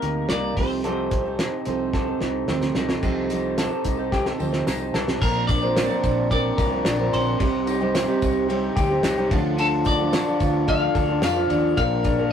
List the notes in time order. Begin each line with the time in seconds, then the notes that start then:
Already playing: C3 A#3 D#4 A#4
0.02 D2 D#4, closed hi-hat
0.29 C2 G3 A#3 D#4 A#4 D5, snare, closed hi-hat
0.56 C2 C3 F3 C4 D#4 A4 C5, kick, open hi-hat
0.84 C3 F3 C4 D#4 A4, closed hi-hat
1.11 C4, kick, closed hi-hat
1.25 C4 D#4 A4
1.39 D#4, snare, closed hi-hat
1.65 C2 F3 C4 D#4 A4, closed hi-hat
1.93 A4, kick, snare
2.07 C4 D#4 A4
2.21 C2 D#4, snare
2.47 D2 F3 C4 D#4 A4, snare
2.62 snare
2.75 C2 F3 C4 D#4 A4, snare
2.89 snare
3.02 C2 C3 F3 C4 D#4 A4, kick, crash, tambourine
3.29 F3 C4 D#4 A4, closed hi-hat, tambourine
3.58 A4, snare, closed hi-hat, tambourine
3.71 C4 D#4 A4
3.85 C2 D#4, kick, closed hi-hat, tambourine
3.97 C4 D#4 A4
4.12 G4, kick, snare, tambourine
4.26 A4, snare
4.38 D2 F3 C4 D#4 A4, tambourine
4.53 snare
4.67 C2 D#4, snare, tambourine
4.79 C4 D#4 A4
4.94 C2 A4, snare, tambourine
5.08 snare
5.21 A#1 A#2 F3 C4 D4 A#4 A#5, kick, crash, tambourine
5.47 D4 D5 D6, kick, ride, tambourine
5.62 A#2 D3 F3 C4 D4 A#4
5.76 C4, snare, ride, tambourine
5.89 A#2 D3 F3 C4 D4 A#4
6.03 A#1 D4, kick, ride, tambourine
6.30 F3 C4 D4 A#4 D5 D6, kick, ride, tambourine
6.58 C2 A#4, kick, ride, tambourine
6.71 F3 C4 D4 A#4
6.85 A#1 D4, snare, ride, tambourine
6.99 A#2 D3 F3 C4 D4 A#4
7.13 A#1 C4 C5 C6, ride, tambourine
7.39 C2 C3 G3 C4 D#4 G4, kick, ride, tambourine
7.67 D#4, ride, tambourine
7.80 C3 G3 C4 D#4 G4
7.94 C4, snare, ride, tambourine
8.08 C3 G3 C4 D#4 G4
8.22 C2 D#4, kick, ride, tambourine
8.48 G3 C4 D#4 G4, ride
8.76 D2 G4, kick, ride, tambourine
8.90 C4 D#4 G4
9.03 C2 D#4, snare, ride, tambourine
9.17 C3 G3 C4 D#4 G4
9.30 D2 D3 F3 D4 F4 A4, kick, ride, tambourine
9.57 D3 A4 A5, ride, tambourine
9.85 D#4 D5 D6, kick, ride, tambourine
9.99 D3 F3 D4 F4 A4
10.12 D4, snare, ride, tambourine
10.27 D3 F3 D4 F4 A4
10.40 D2 F4, kick, ride, tambourine
10.67 F3 D4 F4 A4 F5 F6, kick, ride, tambourine
10.95 D2 A4, kick, ride, tambourine
11.09 D4 F4 A4
11.22 F2 F4 F5 F6, snare, ride, tambourine
11.36 D3 F3 D4 F4 A4
11.50 D#2 D4, ride, tambourine
11.76 A#1 A#2 F3 A#3 D4 A#4 F5 F6, kick, ride, tambourine
12.04 D4, kick, ride, tambourine
12.18 A#2 D3 F3 A#3 D4 A#4